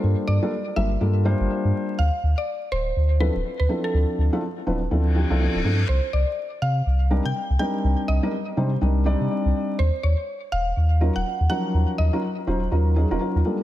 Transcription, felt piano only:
X:1
M:4/4
L:1/16
Q:"Swing 16ths" 1/4=123
K:Eblyd
V:1 name="Felt piano"
[G,B,DFA]3 [G,B,DFA] z2 [G,B,DFB] z [G,B,DFA]2 [G,B,DFc]6 | z8 z2 [F,CD=EA] z3 [F,CDEA]2- | [F,CD=EA]3 [F,CDEA] z2 [F,CDE=B] z [F,CDEA]2 [F,CDEG] [F,CDEA] [F,CDEA] z [F,CDEA] z | z8 z2 [G,CDEB] z3 [G,CDEB]2- |
[G,CDEB]3 [G,CDEB] z2 [G,CDEc] z [G,CDEB]2 [G,CDEd]6 | z8 z2 [_G,_DEFB] z3 [F,G,DEB]2- | [F,_G,_DEB]3 [G,DEFB] z2 [G,DEFc] z [G,DEFB]2 [G,DEF_A] [G,DEFB] [G,DEFB] z [=G,B,=DF=A] z |]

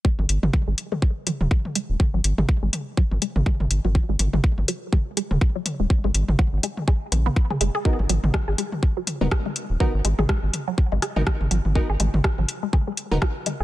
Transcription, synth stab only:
X:1
M:4/4
L:1/16
Q:"Swing 16ths" 1/4=123
K:G#m
V:1 name="Synth stab"
z16 | z16 | z16 | z16 |
[B,DFA] z8 z2 [B,DFA] z4 | [B,DFA] z8 z2 [B,DFA] z4 | [B,DFA] z8 z2 [B,DFA] z4 |]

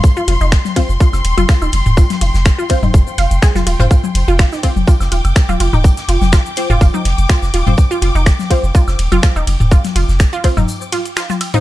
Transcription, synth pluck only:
X:1
M:4/4
L:1/16
Q:"Swing 16ths" 1/4=124
K:Cm
V:1 name="Synth pluck"
z F F E z2 F z F z2 F F E z2 | F z F z2 F F E z2 f z A F F F | F z2 F F E z2 F z F z2 F F E | z2 F z F z2 F F E z2 F z F z |
z F F E z2 F z F z2 F F E z2 | F z F z2 F F E z2 F z F F z E |]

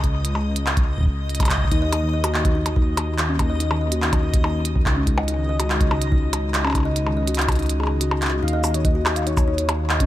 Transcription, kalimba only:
X:1
M:4/4
L:1/16
Q:1/4=143
K:Dbdor
V:1 name="Kalimba"
z16 | E e E E, e G E e E z E z4 D | E e E E, e G E e E z E z4 D | E e E E, e G E e E z E z4 D |
E e E E, e G E e E z A z G z2 G | E e E E, e G E e E z E z4 D |]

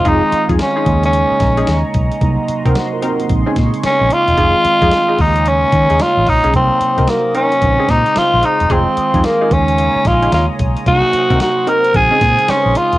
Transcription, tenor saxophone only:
X:1
M:4/4
L:1/16
Q:"Swing 16ths" 1/4=111
K:Bbm
V:1 name="Tenor saxophone"
E4 D3 D6 z3 | z12 D2 F2- | F6 E2 D4 F2 E2 | C4 B,2 D4 E2 F2 E2 |
C4 B,2 D4 F2 F2 z2 | G4 G2 B2 A4 D2 F2 |]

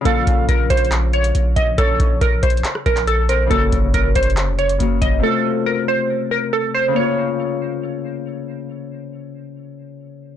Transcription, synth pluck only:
X:1
M:4/4
L:1/8
Q:1/4=139
K:Bbm
V:1 name="Synth pluck"
=A2 B c z d2 e | =A2 B c z B A B | =A2 B c z d2 e | =A2 B c z B A c |
d6 z2 | z8 |]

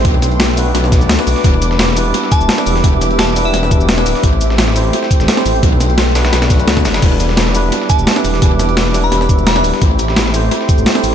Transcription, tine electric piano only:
X:1
M:4/4
L:1/16
Q:1/4=172
K:Em
V:1 name="Tine electric piano"
[A,B,DFB]6 [A,B,DFB]6- [A,B,DFB] [A,B,DFB]3 | [G,B,DEB]6 [G,B,DEB]6- [G,B,DEB] [G,B,DEB]3 | [G,B,DEB]6 [G,B,DEB]6- [G,B,DEB] [G,B,DEB]3 | [A,CEG]6 [A,CEGc]6- [A,CEGc] [A,CEGc]3 |
[A,B,DFB]6 [A,B,DFB]4 [A,B,DFB] [A,B,DFB]2 z3 | [G,B,DEB]6 [G,B,DEB]6- [G,B,DEB] [G,B,DEB]3 | [G,B,DEB]6 [G,B,DEB]6- [G,B,DEB] [G,B,DEB]3 | [A,CEGc]6 [A,CEGc]6- [A,CEGc] [A,CEGc]3 |]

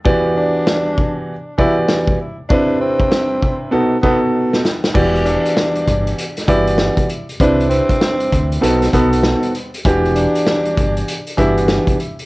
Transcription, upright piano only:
X:1
M:4/4
L:1/8
Q:"Swing 16ths" 1/4=98
K:Em
V:1 name="Upright piano"
[E,B,FGd]4 z [E,B,FGd]2 z | [C,CDEB]4 [B,,B,^DFA] [B,,B,DFA]2 z | [E,B,FGd]4 z [E,B,FGd]2 z | [C,CDEB]4 [B,,B,^DFA] [B,,B,DFA]2 z |
[E,B,DFG]4 z [E,B,DFG]2 z |]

